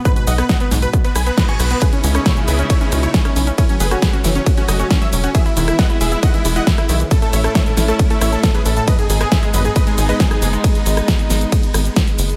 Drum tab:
RD |----------------|x---x---x---x---|x---x---x---x---|x---x---x---x---|
HH |xxoxxxoxxxoxxxox|xxoxxxoxxxoxxxox|xxoxxxoxxxoxxxox|xxoxxxoxxxoxxxox|
SH |xxxxxxxxxxxxxxxx|xxxxxxxxxxxxxxxx|xxxxxxxxxxxxxxxx|xxxxxxxxxxxxxxxx|
SD |---ro-o---r-o-r-|---ro-------or--|---ro-o---r-o---|---ro-------or--|
BD |o---o---o---o---|o---o---o---o---|o---o---o---o---|o---o---o---o---|

RD |x---x---x---x---|x---x---x---x---|x---x---x---x---|
HH |xxoxxxoxxxoxxxox|xxoxxxoxxxoxxxox|xxoxxxoxxxoxxxox|
SH |xxxxxxxxxxxxxxxx|xxxxxxxxxxxxxxxx|xxxxxxxxxxxxxxxx|
SD |---ro-o---r-o---|---ro-------or--|---ro-o---r-o---|
BD |o---o---o---o---|o---o---o---o---|o---o---o---o---|